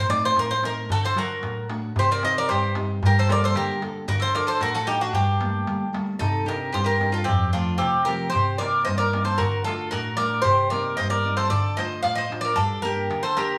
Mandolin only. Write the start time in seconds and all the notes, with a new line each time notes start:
0.92 F#4
1.05 A4
1.18 F#4
1.99 G4
2.11 A#4
2.25 C5
2.38 A#4
2.50 G4
3.06 G4
3.19 A4
3.30 A#4
3.44 A4
3.55 G4
4.08 F#4
4.20 A4
4.35 A#4
4.47 A4
4.61 F#4
4.74 F#4
4.87 D#4
5.01 D4
5.15 D4
6.19 D#4
6.46 G4
6.72 G4
6.84 G4
7.12 F4
7.25 C4
7.53 D4
7.78 C4
8.06 G4
8.32 G4
8.59 A#4
8.85 C5
8.98 A#4
9.24 A4
9.38 F#4
9.65 F4
9.92 F#4
10.18 A#4
10.44 G4
10.71 A#4
10.98 C5
11.10 A#4
11.37 A4
11.50 A4
11.79 C5
12.04 D5
12.18 C5
12.45 A#4
12.57 D4
12.85 G4
13.24 A4
13.38 G4